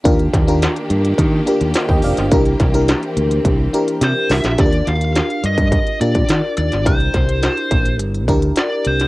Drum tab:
HH |xxxxxxxxx-xxx-ox|xxxxxxxxx-xxx-ox|xxxxxxxxxxxxx-xx|xxxxxxxxxxxxx-xx|
SD |--o-o-------o--o|--o-o-------o-oo|--o-o-------o--o|--o-o-------o--o|
BD |o-o-----o----o--|o-o-----o-------|o------oo--o----|o-o---o---o-----|